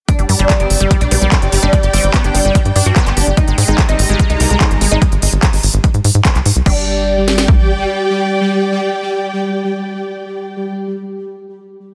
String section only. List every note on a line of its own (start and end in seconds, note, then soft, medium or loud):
0.09 3.37 G4 medium
0.21 3.37 D5 medium
0.52 4.03 G5 medium
3.70 5.02 D#5 medium
4.11 5.02 A#5 loud
6.66 10.71 G4 medium
6.72 10.71 D5 medium
6.78 10.71 G5 medium